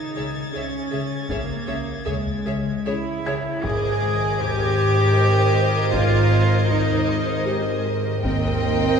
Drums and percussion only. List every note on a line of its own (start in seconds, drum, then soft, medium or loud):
1.30 taiko medium
2.07 taiko low soft
2.27 taiko low soft
3.64 taiko medium
4.40 taiko low medium
4.59 taiko low soft
5.93 taiko medium
6.71 taiko low medium
6.90 taiko low soft
8.24 taiko loud